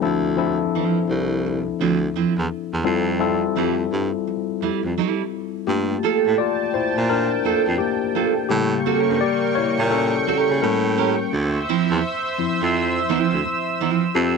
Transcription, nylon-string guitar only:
0.75 0.98 F3 medium
0.75 0.98 C4 medium
0.75 0.98 E4 medium
1.46 muted nylon-string guitar stroke soft
1.81 1.97 F3 medium
1.81 1.98 C4 medium
1.81 1.98 E4 medium
2.16 2.33 F3 medium
2.16 2.33 C4 medium
2.16 2.33 E4 medium
3.56 3.74 G3 medium
3.56 3.74 A3 medium
3.56 3.74 E4 medium
4.27 muted nylon-string guitar stroke soft
4.62 4.79 G3 medium
4.62 4.80 A3 medium
4.62 4.80 E4 medium
4.98 5.21 G3 medium
4.98 5.21 A3 medium
4.98 5.21 E4 medium
6.03 6.35 A#3 medium
6.03 6.36 F4 medium
6.03 6.36 A4 medium
7.10 muted nylon-string guitar stroke soft
7.45 7.62 A#3 medium
7.45 7.62 F4 medium
7.45 7.62 A4 medium
7.80 muted nylon-string guitar stroke soft
8.15 8.32 A#3 medium
8.15 8.33 F4 medium
8.15 8.33 A4 medium
8.86 8.99 C4 medium
8.86 9.00 F#4 medium
8.86 9.00 A4 medium
8.99 9.18 C#4 medium
8.99 9.18 G4 medium
8.99 9.18 A#4 medium
9.92 muted nylon-string guitar stroke soft
10.27 10.50 C#4 medium
10.27 10.51 G4 medium
10.27 10.51 A#4 medium
10.63 muted nylon-string guitar stroke soft
10.98 11.15 C#4 medium
10.98 11.15 G4 medium
10.98 11.15 A#4 medium
11.69 12.01 F3 medium
11.69 12.01 C4 medium
11.69 12.01 E4 medium
12.74 muted nylon-string guitar stroke soft
13.09 13.32 F3 medium
13.09 13.33 C4 loud
13.09 13.33 E4 medium
13.45 muted nylon-string guitar stroke soft
13.81 14.03 F3 medium
13.81 14.04 C4 medium
13.81 14.04 E4 medium

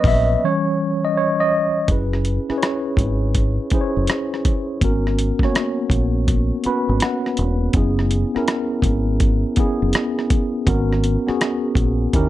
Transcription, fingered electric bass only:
0.05 0.35 A#1 medium
1.89 2.38 F#1 medium
2.50 muted fingered electric bass stroke soft
2.98 3.58 G#1 medium
3.73 muted fingered electric bass stroke soft
3.97 4.07 F#1 medium
4.82 5.31 G#1 medium
5.40 muted fingered electric bass stroke soft
5.91 6.50 A#1 medium
6.66 muted fingered electric bass stroke soft
6.89 6.99 G#1 medium
7.39 7.68 E1 medium
7.74 8.23 F#1 medium
8.36 muted fingered electric bass stroke soft
8.83 9.43 G#1 medium
9.58 muted fingered electric bass stroke soft
9.82 9.92 F#1 medium
10.67 11.16 G#1 medium
11.29 muted fingered electric bass stroke soft
11.76 12.06 A#1 medium
12.14 12.29 D#2 medium

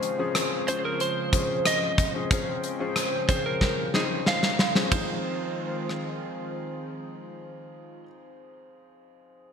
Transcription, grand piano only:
0.00 0.18 F3 medium
0.00 0.19 C4 medium
0.00 0.19 C#4 medium
0.00 0.20 G#4 medium
0.18 0.54 F3 medium
0.18 0.54 C4 medium
0.18 0.54 C#4 medium
0.18 0.55 G#4 medium
0.67 1.15 F3 medium
0.67 1.15 C4 medium
0.67 1.15 C#4 medium
0.67 1.15 G#4 medium
1.33 1.92 F3 medium
1.33 1.92 C4 medium
1.33 1.92 C#4 medium
1.33 1.92 G#4 medium
2.14 2.26 F3 medium
2.14 2.26 C4 medium
2.14 2.26 C#4 medium
2.14 2.27 G#4 medium
2.30 2.66 F3 medium
2.30 2.66 C4 medium
2.30 2.66 C#4 medium
2.30 2.67 G#4 medium
2.79 3.15 F3 medium
2.79 3.15 C4 medium
2.79 3.15 C#4 medium
2.79 3.15 G#4 medium
3.28 3.76 F3 medium
3.28 3.76 C4 medium
3.28 3.76 C#4 medium
3.28 3.76 G#4 medium
3.93 4.53 F3 medium
3.93 4.53 C4 medium
3.93 4.53 C#4 medium
3.93 4.53 D#4 medium
4.75 4.87 F3 medium
4.75 4.87 C4 medium
4.75 4.87 C#4 medium
4.75 4.87 G#4 medium
4.89 8.01 F3 medium
4.89 8.02 C4 medium
4.89 8.04 D#4 medium
4.94 8.05 G#4 medium

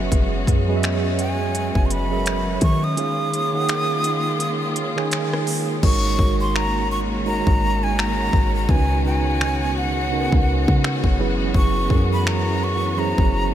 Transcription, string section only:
0.00 2.94 F#3 medium
0.00 5.79 G#3 medium
0.00 2.94 B3 medium
0.00 5.79 C#4 medium
0.00 2.93 F#4 medium
2.97 5.80 D#3 medium
2.97 5.80 A#3 medium
2.97 5.80 F4 medium
5.83 11.15 D#3 medium
5.83 13.54 G#3 medium
5.83 8.66 A#3 medium
5.83 13.54 C#4 medium
5.83 13.54 F#4 medium
8.69 13.54 B3 medium
11.19 13.54 E3 medium

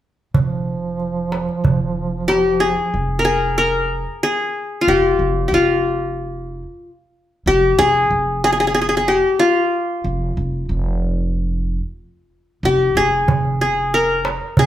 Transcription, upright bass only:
0.34 1.45 F1 medium
1.64 2.74 F1 medium
2.94 4.04 F1 medium
4.88 5.15 F1 medium
5.19 5.47 F1 medium
5.52 6.62 F1 medium
7.46 7.74 F1 medium
7.78 8.06 F1 medium
8.11 9.20 F1 medium
10.04 10.32 F1 medium
10.37 10.65 F1 medium
10.69 11.79 F1 medium
12.63 12.91 F1 medium
12.95 13.23 F1 medium
13.28 14.38 F1 medium

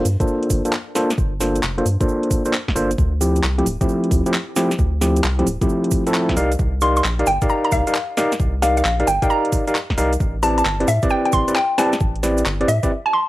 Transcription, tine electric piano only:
0.20 0.62 A#3 medium
0.20 0.62 D4 medium
0.20 0.62 F4 medium
0.20 0.62 A4 medium
0.20 0.62 C5 medium
0.65 0.72 A#3 medium
0.65 0.72 D4 medium
0.65 0.72 F4 medium
0.65 0.72 A4 medium
0.65 0.72 C5 medium
0.95 1.09 A#3 medium
0.95 1.09 D4 medium
0.95 1.09 F4 medium
0.95 1.09 A4 medium
0.95 1.09 C5 loud
1.40 1.59 A#3 medium
1.40 1.59 D4 medium
1.40 1.59 F4 medium
1.40 1.59 A4 medium
1.40 1.59 C5 medium
1.78 1.85 A#3 medium
1.78 1.85 D4 medium
1.78 1.85 F4 medium
1.78 1.85 A4 medium
1.78 1.85 C5 medium
2.00 2.42 A#3 medium
2.00 2.42 D4 medium
2.00 2.42 F4 medium
2.00 2.42 A4 medium
2.00 2.42 C5 medium
2.46 2.53 A#3 medium
2.46 2.53 D4 medium
2.46 2.53 F4 medium
2.46 2.53 A4 medium
2.46 2.53 C5 medium
2.76 2.90 A#3 medium
2.76 2.90 D4 medium
2.76 2.90 F4 medium
2.76 2.90 A4 medium
2.76 2.90 C5 loud
3.21 3.40 F3 medium
3.21 3.40 A3 medium
3.21 3.40 C4 medium
3.21 3.40 E4 medium
3.21 3.40 G4 medium
3.58 3.65 F3 medium
3.58 3.66 A3 medium
3.58 3.65 C4 medium
3.58 3.65 E4 medium
3.58 3.65 G4 medium
3.81 4.23 F3 medium
3.81 4.23 A3 medium
3.81 4.23 C4 medium
3.81 4.22 E4 medium
3.81 4.23 G4 medium
4.26 4.33 F3 medium
4.26 4.33 A3 medium
4.26 4.33 C4 medium
4.26 4.33 E4 medium
4.26 4.33 G4 medium
4.56 4.70 F3 medium
4.56 4.70 A3 medium
4.56 4.70 C4 medium
4.56 4.70 E4 medium
4.56 4.70 G4 loud
5.01 5.20 F3 medium
5.01 5.20 A3 medium
5.01 5.20 C4 medium
5.01 5.20 E4 medium
5.01 5.20 G4 medium
5.39 5.46 F3 medium
5.39 5.46 A3 medium
5.39 5.46 C4 medium
5.39 5.46 E4 medium
5.39 5.46 G4 medium
5.61 6.03 F3 medium
5.61 6.03 A3 medium
5.61 6.03 C4 medium
5.61 6.03 E4 medium
5.61 6.03 G4 medium
6.07 6.35 F3 medium
6.07 6.35 A3 medium
6.07 6.35 C4 medium
6.07 6.35 E4 medium
6.07 6.35 A4 medium
6.37 6.51 D#4 medium
6.37 6.51 G4 medium
6.37 6.51 A#4 medium
6.37 6.51 D5 medium
6.37 6.51 F5 loud
6.82 7.01 D#4 medium
6.82 7.01 G4 medium
6.82 7.01 A#4 medium
6.82 7.01 D5 medium
6.82 7.01 F5 medium
7.19 7.26 D#4 medium
7.19 7.26 G4 medium
7.19 7.26 A#4 medium
7.19 7.26 D5 medium
7.19 7.26 F5 medium
7.42 7.83 D#4 medium
7.42 7.83 G4 medium
7.42 7.83 A#4 medium
7.42 7.83 D5 medium
7.42 7.83 F5 medium
7.87 7.94 D#4 medium
7.87 7.94 G4 medium
7.87 7.94 A#4 medium
7.87 7.94 D5 medium
7.87 7.94 F5 medium
8.17 8.31 D#4 medium
8.17 8.31 G4 medium
8.17 8.31 A#4 medium
8.17 8.31 D5 medium
8.17 8.31 F5 loud
8.62 8.81 D#4 medium
8.62 8.81 G4 medium
8.62 8.81 A#4 medium
8.62 8.81 D5 medium
8.62 8.81 F5 medium
9.00 9.07 D#4 medium
9.00 9.07 G4 medium
9.00 9.07 A#4 medium
9.00 9.07 D5 medium
9.00 9.07 F5 medium
9.22 9.64 D#4 medium
9.22 9.64 G4 medium
9.22 9.64 A#4 medium
9.22 9.64 D5 medium
9.22 9.64 F5 medium
9.67 9.75 D#4 medium
9.67 9.75 G4 medium
9.67 9.75 A#4 medium
9.67 9.75 D5 medium
9.67 9.75 F5 medium
9.98 10.12 D#4 medium
9.98 10.12 G4 medium
9.98 10.12 A#4 medium
9.98 10.12 D5 medium
9.98 10.12 F5 loud
10.43 10.61 C4 medium
10.43 10.61 E4 medium
10.43 10.61 G4 medium
10.43 10.61 B4 medium
10.43 10.61 D5 medium
10.80 10.87 C4 medium
10.80 10.87 E4 medium
10.80 10.87 G4 medium
10.80 10.87 B4 medium
10.80 10.87 D5 medium
11.03 11.44 C4 medium
11.03 11.44 E4 medium
11.03 11.44 G4 medium
11.03 11.44 B4 medium
11.03 11.44 D5 medium
11.48 11.55 C4 medium
11.48 11.55 E4 medium
11.48 11.55 G4 medium
11.48 11.55 B4 medium
11.48 11.55 D5 medium
11.78 11.92 C4 medium
11.78 11.92 E4 medium
11.78 11.92 G4 medium
11.78 11.92 B4 medium
11.78 11.92 D5 loud
12.23 12.42 C4 medium
12.23 12.42 E4 medium
12.23 12.42 G4 medium
12.23 12.42 B4 medium
12.23 12.42 D5 medium
12.61 12.68 C4 medium
12.61 12.68 E4 medium
12.61 12.68 G4 medium
12.61 12.68 B4 medium
12.61 12.68 D5 medium
12.83 12.91 C4 medium
12.83 12.91 E4 medium
12.83 12.91 G4 medium
12.83 12.91 B4 medium
12.83 12.91 D5 medium

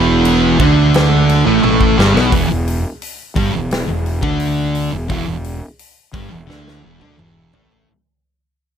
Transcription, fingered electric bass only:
0.00 0.56 E1 loud
0.60 1.42 D2 loud
1.47 1.63 A1 loud
1.63 1.96 A1 loud
1.98 2.14 G1 loud
2.15 2.32 B1 medium
2.32 2.49 E1 medium
2.51 2.83 E1 medium
3.36 3.53 G1 medium
3.54 3.86 E1 medium
3.88 4.21 E1 medium
4.23 4.88 D2 medium
4.92 5.09 E1 medium
5.10 5.26 E1 loud
5.27 5.60 E1 medium
6.14 6.30 G1 medium
6.33 6.48 E1 medium
6.49 6.81 D2 medium
7.02 7.17 D2 medium
7.19 7.51 E1 medium
7.55 7.86 A1 medium

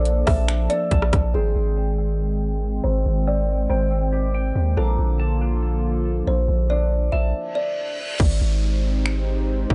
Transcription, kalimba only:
0.00 0.24 D5 medium
0.27 0.67 E5 medium
0.70 1.30 D5 medium
1.35 2.16 G#4 loud
2.84 3.04 C5 medium
3.27 3.67 D5 medium
3.70 4.30 C5 medium
4.77 5.59 A4 loud
6.27 6.48 C5 medium
6.70 7.10 D5 medium
7.12 7.53 E5 medium
7.55 8.16 D5 medium

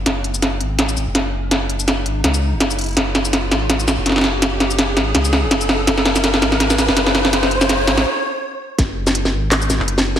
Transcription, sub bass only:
0.06 0.62 F#1 loud
0.61 0.96 G#1 loud
0.97 1.06 G#1 medium
1.07 2.07 F#1 medium
2.06 2.23 G#1 loud
2.24 2.54 C#2 medium
2.52 2.96 F#1 medium
2.97 3.53 F#1 medium
3.51 3.87 G#1 loud
3.87 3.97 G#1 medium
3.97 4.98 F#1 medium
4.97 5.14 G#1 loud
5.15 5.44 C#2 medium
5.43 5.87 F#1 medium
5.87 6.43 F#1 loud
6.42 6.77 G#1 loud
6.78 6.88 G#1 medium
6.88 7.89 F#1 loud
7.87 8.04 G#1 loud
8.79 9.35 F#1 loud
9.33 9.69 G#1 loud
9.70 9.79 G#1 medium
9.80 10.20 F#1 medium

